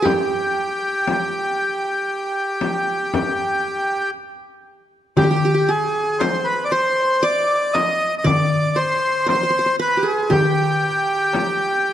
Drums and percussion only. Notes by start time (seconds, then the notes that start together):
0.05 frame drum
1.08 frame drum
2.61 frame drum
3.14 frame drum
5.17 darbuka dum, frame drum
5.69 darbuka ka
6.20 darbuka tek, frame drum
7.75 darbuka tek, frame drum
8.25 darbuka dum, frame drum
9.28 darbuka tek, frame drum
10.31 darbuka dum, frame drum
10.83 darbuka ka
11.33 darbuka tek, frame drum